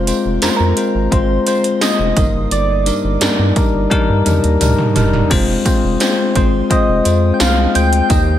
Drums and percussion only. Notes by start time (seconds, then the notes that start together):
0.07 closed hi-hat, tambourine
0.42 snare, closed hi-hat, tambourine
0.77 closed hi-hat, tambourine
1.12 kick, closed hi-hat
1.47 closed hi-hat, tambourine
1.64 closed hi-hat
1.81 snare, closed hi-hat, tambourine
2.17 kick, closed hi-hat, tambourine
2.51 closed hi-hat, tambourine
2.86 closed hi-hat, tambourine
3.21 snare, closed hi-hat, tambourine
3.56 kick, closed hi-hat, tambourine
3.91 kick, closed hi-hat, high tom
4.26 closed hi-hat, mid tom, tambourine
4.44 closed hi-hat
4.61 closed hi-hat, mid tom, tambourine
4.78 mid tom
4.96 closed hi-hat, floor tom, tambourine
5.13 floor tom
5.31 kick, closed hi-hat, crash, tambourine
5.66 kick, closed hi-hat, tambourine
6.00 snare, closed hi-hat, tambourine
6.35 kick, closed hi-hat, tambourine
6.71 kick, closed hi-hat, tambourine
7.05 closed hi-hat, tambourine
7.40 snare, closed hi-hat, tambourine
7.75 closed hi-hat, tambourine
7.93 closed hi-hat
8.10 kick, closed hi-hat, tambourine